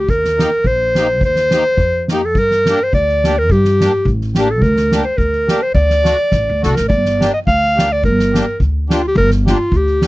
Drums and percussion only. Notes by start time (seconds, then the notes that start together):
0.09 kick
0.25 snare
0.39 snare
0.64 kick
0.95 snare
1.21 kick
1.36 snare
1.51 snare
1.78 kick
2.08 snare
2.35 kick
2.51 snare
2.66 snare
2.93 kick
3.09 snare
3.24 snare
3.50 kick
3.65 snare
3.81 snare
4.06 kick
4.21 snare
4.35 snare
4.62 kick
4.76 snare
4.92 snare
5.18 kick
5.33 snare
5.48 snare
5.75 kick
5.90 snare
6.05 snare
6.31 kick, snare
6.63 snare
6.76 snare
6.90 kick
7.05 snare
7.21 snare
7.47 kick
7.63 snare
7.79 snare
8.04 kick
8.19 snare
8.35 snare
8.60 kick
8.90 snare
9.16 kick
9.30 snare
9.47 snare
9.72 kick
9.87 snare
10.02 snare